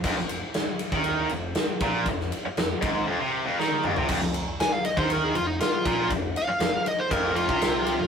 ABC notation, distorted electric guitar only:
X:1
M:4/4
L:1/16
Q:1/4=119
K:Fm
V:1 name="Distorted electric guitar" clef=bass
F,, F,,2 z4 E,3 F,,2 z2 B,,2 | F,,2 z2 F,, z A,,2 F,, C,2 F,, E,2 F,, C, | F,, F,,2 z4 E,3 F,,2 z2 B,,2 | F,,2 z2 F,, z3 F,,3 C,4 F,, |]